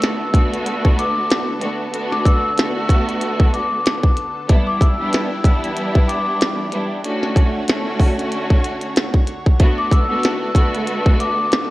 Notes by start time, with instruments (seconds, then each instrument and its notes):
Already playing: analog synth pad D3 B3 A4, string section A3 B3 D4 F#4, vibraphone E6
0.02 snare, closed hi-hat
0.33 string section A3 B3 D4 F#4, kick, closed hi-hat
0.53 closed hi-hat
0.66 closed hi-hat
0.84 kick
0.98 vibraphone D6, closed hi-hat
1.30 snare, closed hi-hat
1.61 string section A3 B3 D4 F#4, closed hi-hat
1.92 string section A3 B3 D4 F#4, closed hi-hat
2.12 vibraphone D6, snare
2.25 vibraphone E6, kick, closed hi-hat
2.57 string section A3 B3 D4 F#4, snare, closed hi-hat
2.89 kick, closed hi-hat
3.09 closed hi-hat
3.21 closed hi-hat
3.40 kick
3.54 vibraphone D6, closed hi-hat
3.86 snare, closed hi-hat
4.03 kick
4.17 closed hi-hat
4.48 analog synth pad E3 D4 G4, string section G3 B3 D4 E4, kick, closed hi-hat
4.67 vibraphone D6
4.81 vibraphone E6, kick, closed hi-hat
5.00 string section G3 B3 D4 E4
5.13 snare, closed hi-hat
5.44 string section G3 B3 D4 E4, kick, closed hi-hat
5.64 closed hi-hat
5.77 closed hi-hat
5.95 kick
6.08 vibraphone D6, closed hi-hat
6.41 snare, closed hi-hat
6.72 string section G3 B3 D4 E4, closed hi-hat
7.04 analog synth pad D3 F#4 C#5, string section A3 C#4 D4 F#4, closed hi-hat
7.23 snare
7.36 kick, closed hi-hat
7.68 string section A3 C#4 D4 F#4, snare, closed hi-hat
8.00 kick, open hi-hat
8.19 closed hi-hat
8.32 closed hi-hat
8.51 kick
8.65 closed hi-hat
8.82 closed hi-hat
8.96 snare, closed hi-hat
9.14 kick
9.27 closed hi-hat
9.47 kick
9.60 analog synth pad D3 B3 A4, string section A3 B3 D4 F#4, kick, closed hi-hat
9.78 vibraphone D6
9.92 vibraphone E6, kick, closed hi-hat
10.09 string section A3 B3 D4 F#4
10.24 snare, closed hi-hat
10.54 string section A3 B3 D4 F#4, kick, closed hi-hat
10.75 closed hi-hat
10.87 closed hi-hat
11.06 kick
11.20 vibraphone D6, closed hi-hat
11.52 snare, closed hi-hat